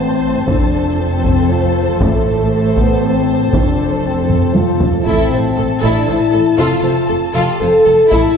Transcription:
0.00 0.44 A1 medium
0.00 0.44 A2 medium
0.00 0.48 C4 medium
0.00 0.44 C5 medium
0.00 1.97 C5 medium
0.00 1.97 A5 medium
0.48 1.98 F1 soft
0.48 1.98 F2 medium
0.48 0.99 D4 medium
0.48 3.49 A4 soft
0.48 taiko medium
0.99 1.50 C4 medium
1.24 taiko medium
1.50 2.01 F4 medium
2.00 3.50 A1 soft
2.00 3.50 A2 soft
2.00 2.76 A3 medium
2.00 5.02 C5 soft
2.00 5.02 A5 soft
2.00 taiko medium
2.77 3.02 B3 medium
2.77 taiko medium
3.02 3.53 C4 medium
3.53 5.03 F1 medium
3.53 5.03 F2 medium
3.53 4.03 D4 medium
3.53 5.02 A4 soft
3.53 taiko medium
4.03 4.55 C4 medium
4.30 taiko low-mid medium
4.54 5.05 F4 medium
4.54 taiko high medium
4.80 taiko low medium
5.05 5.14 A1 medium
5.05 5.14 A2 medium
5.05 5.80 C4 medium
5.05 5.30 E4 medium
5.05 5.29 A4 medium
5.05 8.08 A5 soft
5.05 taiko medium
5.31 5.39 A1 soft
5.31 5.39 A2 soft
5.31 5.39 A4 soft
5.31 5.40 C5 soft
5.56 5.65 A1 soft
5.56 5.65 A2 soft
5.56 5.64 A4 soft
5.56 5.65 A4 soft
5.80 5.90 A1 medium
5.80 5.91 A2 medium
5.80 6.07 D4 medium
5.80 6.05 E4 medium
5.80 6.05 A4 medium
5.80 taiko soft
6.06 6.16 A1 soft
6.06 6.16 A2 soft
6.06 6.58 E4 medium
6.06 6.14 A4 soft
6.06 6.15 C5 soft
6.31 6.42 A1 soft
6.31 6.41 A2 soft
6.31 6.39 A4 medium
6.31 6.40 A4 soft
6.57 6.67 F1 medium
6.57 6.66 F2 medium
6.57 6.82 F4 medium
6.57 7.18 F4 medium
6.57 6.81 A4 medium
6.83 6.92 F1 soft
6.83 6.92 F2 soft
6.83 6.91 A4 soft
6.83 6.91 C5 soft
7.08 7.17 F1 soft
7.08 7.17 F2 soft
7.08 7.16 A4 soft
7.33 7.43 F1 medium
7.33 7.43 F2 medium
7.33 7.58 F4 medium
7.33 7.60 G4 medium
7.33 7.58 A4 medium
7.60 7.69 F1 soft
7.60 7.69 F2 soft
7.60 7.68 A4 soft
7.60 8.10 A4 medium
7.60 7.68 C5 medium
7.85 7.94 F1 soft
7.85 7.94 F2 soft
7.85 7.93 A4 soft
8.11 8.20 A1 medium
8.11 8.19 A2 medium
8.11 8.35 E4 medium
8.11 8.37 E4 medium
8.11 8.35 A4 soft
8.11 8.37 A5 soft
8.11 taiko soft

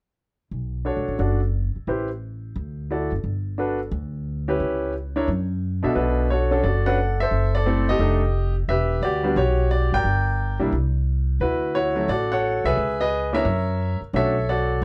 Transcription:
0.51 0.94 B1 medium
0.85 1.17 D4 soft
0.85 1.18 F#4 soft
0.85 1.18 A4 soft
0.85 1.19 C#5 medium
0.97 1.07 C#2 medium
1.08 1.18 A1 medium
1.19 1.71 F#1 medium
1.19 1.39 D4 soft
1.19 1.39 F#4 soft
1.19 1.39 A4 soft
1.19 1.40 D5 soft
1.76 muted upright bass stroke soft
1.87 2.52 A1 medium
1.87 2.07 E4 soft
1.87 2.08 G4 soft
1.87 2.08 B4 soft
1.87 2.08 C5 soft
2.56 3.08 D2 medium
2.91 3.10 E4 soft
2.91 3.10 F#4 soft
2.91 3.10 A4 soft
2.91 3.11 D5 medium
3.12 3.23 F#1 medium
3.24 3.89 G1 medium
3.58 3.78 D4 medium
3.58 3.78 F#4 soft
3.58 3.78 A4 soft
3.58 3.79 B4 medium
3.91 4.57 D2 medium
4.48 4.92 C#4 medium
4.48 4.92 E4 medium
4.48 4.92 G4 medium
4.48 4.93 B4 medium
4.60 5.25 C#2 medium
5.16 5.27 D4 medium
5.16 5.27 E4 medium
5.16 5.27 A#4 medium
5.16 5.28 C#5 medium
5.28 5.80 F#2 medium
5.83 5.95 A#1 medium
5.83 6.27 B2 medium
5.83 5.96 D4 medium
5.83 5.96 F#4 medium
5.83 6.28 A4 medium
5.83 6.28 E5 medium
5.95 6.61 B1 medium
5.95 6.50 D4 medium
5.95 6.31 F#4 soft
5.95 6.28 B4 medium
6.30 6.50 F#4 medium
6.30 6.51 A4 medium
6.30 6.62 C#5 medium
6.51 6.63 C#4 medium
6.51 6.63 D4 medium
6.51 6.63 F#4 medium
6.51 6.63 A4 medium
6.64 7.29 F#1 medium
6.64 6.85 F#4 soft
6.64 6.87 A4 medium
6.64 6.84 D5 medium
6.86 6.97 C#4 medium
6.86 6.97 D4 medium
6.86 6.97 F#4 medium
6.86 7.21 A4 medium
6.86 6.98 B4 medium
6.86 7.30 D5 medium
6.86 7.18 F#5 medium
7.20 7.55 A4 medium
7.20 7.86 C5 medium
7.20 7.55 E5 medium
7.31 7.97 F#1 medium
7.55 7.66 A4 medium
7.55 7.90 D5 medium
7.66 7.97 A3 medium
7.66 7.99 C4 medium
7.66 7.99 E4 medium
7.66 7.89 A4 medium
7.89 8.54 G4 medium
7.89 7.99 A4 medium
7.89 8.53 D#5 medium
7.99 8.65 F1 medium
7.99 8.19 A3 medium
7.99 8.20 D4 medium
7.99 8.20 D#4 medium
7.99 8.20 A4 medium
8.68 9.00 E1 medium
8.68 9.03 G4 medium
8.68 9.33 B4 medium
8.68 9.00 E5 medium
9.01 9.34 D2 medium
9.01 9.23 F#4 medium
9.01 9.37 G4 medium
9.01 9.38 D5 medium
9.23 9.35 G3 medium
9.23 9.35 B3 medium
9.23 9.36 D4 medium
9.23 9.36 F#4 medium
9.36 9.88 B1 medium
9.36 10.02 F#4 medium
9.36 10.02 G4 medium
9.36 9.69 C#5 medium
9.71 9.93 D5 medium
9.92 10.04 G#1 medium
9.92 10.58 A#4 medium
9.92 10.58 D5 medium
9.92 10.57 G5 loud
10.04 10.56 G1 medium
10.60 10.71 B1 medium
10.60 10.71 G3 medium
10.60 10.71 A#3 soft
10.60 10.71 D4 medium
10.60 10.72 E4 medium
10.73 11.37 C2 medium
11.40 12.05 D2 medium
11.40 11.75 E4 medium
11.40 11.75 F#4 medium
11.40 11.76 B4 medium
11.75 11.95 E4 medium
11.75 12.09 F#4 medium
11.75 12.10 C#5 medium
11.95 12.07 F#3 medium
11.95 12.07 A3 medium
11.95 12.08 C#4 medium
11.95 12.08 E4 medium
12.08 12.61 A1 medium
12.08 12.74 F#4 medium
12.08 12.31 A4 medium
12.08 12.30 D5 medium
12.32 12.75 A4 medium
12.32 12.75 C#5 medium
12.32 12.66 F#5 medium
12.64 12.76 C2 medium
12.64 13.00 G#4 medium
12.64 13.00 B4 medium
12.64 13.00 E5 loud
12.77 13.42 C#2 medium
13.01 13.43 G#4 medium
13.01 13.43 B4 medium
13.01 13.35 D#5 medium
13.33 13.44 A#3 medium
13.33 13.44 C#4 medium
13.33 13.44 D4 medium
13.33 13.44 E4 medium
13.33 13.98 A#4 medium
13.33 13.98 C#5 medium
13.33 13.98 E5 medium
13.45 13.97 F#2 medium
14.01 muted upright bass stroke soft
14.13 14.78 B1 medium
14.13 14.33 A3 medium
14.13 14.33 C#4 soft
14.13 14.34 D4 medium
14.13 14.34 F#4 medium
14.13 14.48 A4 medium
14.13 14.79 C#5 medium
14.13 14.50 E5 medium
14.49 14.82 F#4 medium
14.49 14.82 A4 medium
14.49 14.84 D5 medium

